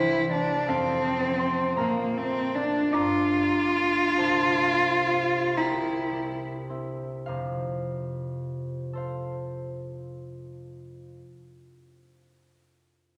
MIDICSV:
0, 0, Header, 1, 3, 480
1, 0, Start_track
1, 0, Key_signature, -1, "major"
1, 0, Tempo, 723764
1, 691, Tempo, 755668
1, 1163, Time_signature, 6, 3, 24, 8
1, 1651, Tempo, 814111
1, 2611, Tempo, 909091
1, 3091, Tempo, 1029160
1, 3571, Tempo, 1169591
1, 4051, Tempo, 1107011
1, 4531, Tempo, 1094891
1, 6624, End_track
2, 0, Start_track
2, 0, Title_t, "Harp"
2, 0, Program_c, 0, 46
2, 0, Note_on_c, 0, 36, 71
2, 0, Note_on_c, 0, 52, 58
2, 0, Note_on_c, 0, 55, 60
2, 0, Note_on_c, 0, 70, 76
2, 0, Note_on_c, 0, 72, 93
2, 0, Note_on_c, 0, 79, 89
2, 0, Note_on_c, 0, 82, 103
2, 0, Note_on_c, 0, 84, 119
2, 0, Note_on_c, 0, 91, 116
2, 211, Note_on_c, 0, 58, 51
2, 218, Note_on_c, 0, 60, 55
2, 441, Note_on_c, 0, 81, 102
2, 444, Note_on_c, 0, 69, 76
2, 451, Note_on_c, 0, 77, 83
2, 453, Note_on_c, 0, 41, 68
2, 461, Note_off_c, 0, 91, 0
2, 463, Note_off_c, 0, 82, 0
2, 465, Note_off_c, 0, 79, 0
2, 466, Note_off_c, 0, 70, 0
2, 468, Note_off_c, 0, 36, 0
2, 471, Note_off_c, 0, 52, 0
2, 471, Note_off_c, 0, 55, 0
2, 472, Note_off_c, 0, 58, 0
2, 692, Note_on_c, 0, 53, 59
2, 905, Note_off_c, 0, 84, 0
2, 912, Note_off_c, 0, 72, 0
2, 912, Note_on_c, 0, 84, 114
2, 919, Note_on_c, 0, 72, 83
2, 922, Note_off_c, 0, 60, 0
2, 927, Note_on_c, 0, 57, 59
2, 930, Note_on_c, 0, 60, 64
2, 1147, Note_on_c, 0, 34, 71
2, 1152, Note_on_c, 0, 82, 114
2, 1153, Note_off_c, 0, 77, 0
2, 1161, Note_on_c, 0, 70, 93
2, 1165, Note_on_c, 0, 46, 81
2, 1174, Note_on_c, 0, 77, 87
2, 1177, Note_off_c, 0, 84, 0
2, 1180, Note_off_c, 0, 72, 0
2, 1183, Note_off_c, 0, 41, 0
2, 1185, Note_off_c, 0, 60, 0
2, 1400, Note_off_c, 0, 57, 0
2, 1408, Note_on_c, 0, 57, 62
2, 1650, Note_off_c, 0, 57, 0
2, 1656, Note_on_c, 0, 57, 53
2, 1660, Note_on_c, 0, 62, 58
2, 1871, Note_on_c, 0, 86, 111
2, 1872, Note_off_c, 0, 82, 0
2, 1879, Note_on_c, 0, 74, 88
2, 1880, Note_on_c, 0, 82, 89
2, 1884, Note_on_c, 0, 43, 74
2, 1896, Note_off_c, 0, 81, 0
2, 1898, Note_off_c, 0, 69, 0
2, 1899, Note_off_c, 0, 34, 0
2, 1899, Note_off_c, 0, 77, 0
2, 1901, Note_off_c, 0, 46, 0
2, 1901, Note_off_c, 0, 53, 0
2, 1903, Note_off_c, 0, 57, 0
2, 2121, Note_on_c, 0, 55, 59
2, 2360, Note_off_c, 0, 62, 0
2, 2363, Note_on_c, 0, 58, 56
2, 2367, Note_on_c, 0, 62, 59
2, 2603, Note_on_c, 0, 84, 115
2, 2608, Note_on_c, 0, 72, 83
2, 2613, Note_on_c, 0, 81, 86
2, 2615, Note_on_c, 0, 36, 71
2, 2624, Note_off_c, 0, 86, 0
2, 2628, Note_off_c, 0, 70, 0
2, 2628, Note_off_c, 0, 74, 0
2, 2628, Note_off_c, 0, 82, 0
2, 2630, Note_off_c, 0, 43, 0
2, 2631, Note_off_c, 0, 55, 0
2, 2631, Note_off_c, 0, 58, 0
2, 2632, Note_off_c, 0, 62, 0
2, 2842, Note_on_c, 0, 57, 57
2, 3092, Note_on_c, 0, 60, 50
2, 3095, Note_on_c, 0, 65, 52
2, 3315, Note_on_c, 0, 82, 87
2, 3320, Note_off_c, 0, 36, 0
2, 3320, Note_on_c, 0, 70, 64
2, 3322, Note_on_c, 0, 79, 69
2, 3325, Note_on_c, 0, 36, 62
2, 3340, Note_off_c, 0, 57, 0
2, 3341, Note_off_c, 0, 81, 0
2, 3343, Note_off_c, 0, 65, 0
2, 3570, Note_on_c, 0, 55, 53
2, 3802, Note_off_c, 0, 60, 0
2, 3807, Note_on_c, 0, 60, 47
2, 3810, Note_on_c, 0, 64, 49
2, 4039, Note_on_c, 0, 77, 73
2, 4045, Note_on_c, 0, 41, 59
2, 4049, Note_on_c, 0, 48, 58
2, 4067, Note_off_c, 0, 82, 0
2, 4070, Note_off_c, 0, 55, 0
2, 4070, Note_off_c, 0, 64, 0
2, 4070, Note_off_c, 0, 70, 0
2, 4070, Note_off_c, 0, 79, 0
2, 4072, Note_off_c, 0, 36, 0
2, 4388, Note_off_c, 0, 84, 0
2, 4392, Note_off_c, 0, 72, 0
2, 4766, Note_on_c, 0, 69, 44
2, 4775, Note_on_c, 0, 72, 47
2, 4778, Note_off_c, 0, 77, 0
2, 4783, Note_on_c, 0, 77, 48
2, 5495, Note_off_c, 0, 60, 0
2, 5749, Note_off_c, 0, 41, 0
2, 5753, Note_off_c, 0, 48, 0
2, 6127, Note_off_c, 0, 69, 0
2, 6132, Note_off_c, 0, 72, 0
2, 6136, Note_off_c, 0, 77, 0
2, 6624, End_track
3, 0, Start_track
3, 0, Title_t, "Cello"
3, 0, Program_c, 1, 42
3, 0, Note_on_c, 1, 64, 96
3, 208, Note_off_c, 1, 64, 0
3, 212, Note_on_c, 1, 62, 95
3, 459, Note_on_c, 1, 60, 93
3, 469, Note_off_c, 1, 62, 0
3, 1167, Note_off_c, 1, 60, 0
3, 1171, Note_on_c, 1, 58, 81
3, 1410, Note_on_c, 1, 60, 91
3, 1419, Note_off_c, 1, 58, 0
3, 1652, Note_on_c, 1, 62, 92
3, 1661, Note_off_c, 1, 60, 0
3, 1883, Note_on_c, 1, 65, 120
3, 1892, Note_off_c, 1, 62, 0
3, 3316, Note_on_c, 1, 64, 79
3, 3323, Note_off_c, 1, 65, 0
3, 3686, Note_off_c, 1, 64, 0
3, 6624, End_track
0, 0, End_of_file